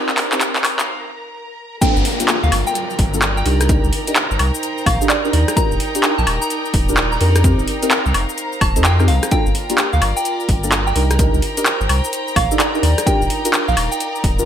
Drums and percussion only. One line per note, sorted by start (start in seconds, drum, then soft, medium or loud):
0.09 clap medium
0.09 shaker soft
0.18 clap loud
0.18 open hi-hat loud
0.32 clap medium
0.32 shaker medium
0.41 clap loud
0.41 closed hi-hat medium
0.41 shaker medium
0.56 clap medium
0.56 shaker soft
0.65 clap loud
0.65 open hi-hat loud
0.65 high woodblock medium
0.79 clap medium
0.79 closed hi-hat soft
0.79 shaker medium
1.82 kick loud
1.82 closed hi-hat medium
1.82 shaker medium
1.97 shaker soft
2.05 open hi-hat loud
2.20 closed hi-hat medium
2.20 shaker medium
2.28 clap loud
2.28 closed hi-hat medium
2.28 shaker soft
2.43 shaker soft
2.52 open hi-hat loud
2.52 high woodblock medium
2.67 shaker medium
2.75 closed hi-hat medium
2.75 shaker soft
2.90 shaker soft
2.99 kick loud
2.99 open hi-hat loud
3.14 shaker medium
3.22 clap loud
3.22 closed hi-hat medium
3.22 shaker soft
3.37 shaker soft
3.46 open hi-hat loud
3.61 cross-stick medium
3.61 closed hi-hat medium
3.61 shaker medium
3.69 kick loud
3.69 closed hi-hat medium
3.69 shaker medium
3.84 shaker soft
3.93 open hi-hat loud
4.07 closed hi-hat medium
4.07 shaker medium
4.16 clap loud
4.16 closed hi-hat medium
4.16 shaker soft
4.31 shaker soft
4.39 open hi-hat loud
4.39 high woodblock medium
4.54 shaker medium
4.63 closed hi-hat medium
4.63 shaker soft
4.78 shaker soft
4.86 kick loud
4.86 open hi-hat loud
4.86 high woodblock medium
5.01 shaker medium
5.10 clap loud
5.10 closed hi-hat medium
5.10 shaker medium
5.25 shaker soft
5.33 open hi-hat loud
5.48 cross-stick medium
5.48 closed hi-hat medium
5.48 shaker medium
5.57 kick loud
5.57 closed hi-hat medium
5.57 shaker medium
5.72 shaker soft
5.80 open hi-hat loud
5.95 closed hi-hat medium
5.95 shaker medium
6.04 clap loud
6.04 closed hi-hat medium
6.04 shaker medium
6.19 shaker soft
6.27 open hi-hat loud
6.27 high woodblock medium
6.42 shaker medium
6.50 closed hi-hat medium
6.50 shaker medium
6.65 shaker soft
6.74 kick loud
6.74 open hi-hat loud
6.89 shaker medium
6.97 clap loud
6.97 closed hi-hat medium
6.97 shaker medium
7.12 shaker soft
7.21 open hi-hat loud
7.36 cross-stick medium
7.36 closed hi-hat medium
7.36 shaker medium
7.44 kick loud
7.44 closed hi-hat medium
7.44 shaker medium
7.59 shaker soft
7.68 open hi-hat loud
7.83 closed hi-hat medium
7.83 shaker medium
7.91 clap loud
7.91 closed hi-hat medium
7.91 shaker medium
8.06 shaker soft
8.14 open hi-hat loud
8.14 high woodblock medium
8.29 shaker medium
8.38 closed hi-hat medium
8.38 shaker medium
8.53 shaker soft
8.61 kick loud
8.61 open hi-hat medium
8.61 high woodblock medium
8.76 closed hi-hat soft
8.76 shaker medium
8.85 clap loud
8.85 closed hi-hat medium
8.85 shaker medium
9.00 cross-stick medium
9.00 shaker soft
9.08 open hi-hat loud
9.23 cross-stick medium
9.23 closed hi-hat medium
9.23 shaker medium
9.31 kick loud
9.31 closed hi-hat medium
9.31 shaker medium
9.46 shaker soft
9.55 open hi-hat loud
9.70 closed hi-hat medium
9.70 shaker medium
9.78 clap loud
9.78 closed hi-hat medium
9.78 shaker medium
9.93 shaker soft
10.02 open hi-hat loud
10.02 high woodblock medium
10.17 shaker medium
10.25 closed hi-hat medium
10.25 shaker medium
10.40 shaker soft
10.49 kick loud
10.49 open hi-hat loud
10.64 shaker medium
10.72 clap loud
10.72 closed hi-hat medium
10.72 shaker medium
10.87 shaker soft
10.96 open hi-hat loud
11.11 cross-stick medium
11.11 closed hi-hat medium
11.11 shaker medium
11.19 kick loud
11.19 closed hi-hat medium
11.19 shaker medium
11.34 shaker soft
11.42 open hi-hat loud
11.57 closed hi-hat medium
11.57 shaker medium
11.66 clap loud
11.66 closed hi-hat medium
11.66 shaker medium
11.81 shaker soft
11.89 open hi-hat loud
11.89 high woodblock medium
12.04 shaker medium
12.13 closed hi-hat medium
12.13 shaker medium
12.28 shaker soft
12.36 kick loud
12.36 open hi-hat loud
12.36 high woodblock medium
12.51 shaker medium
12.60 clap loud
12.60 closed hi-hat medium
12.60 shaker medium
12.75 shaker soft
12.83 open hi-hat loud
12.98 cross-stick medium
12.98 closed hi-hat medium
12.98 shaker medium
13.07 kick loud
13.07 closed hi-hat medium
13.07 shaker medium
13.22 shaker soft
13.30 open hi-hat loud
13.45 closed hi-hat medium
13.45 shaker medium
13.54 clap loud
13.54 closed hi-hat medium
13.54 shaker medium
13.68 shaker soft
13.77 open hi-hat loud
13.77 high woodblock medium
13.92 shaker medium
14.00 closed hi-hat medium
14.00 shaker medium
14.15 shaker soft
14.24 kick loud
14.24 open hi-hat loud
14.39 shaker medium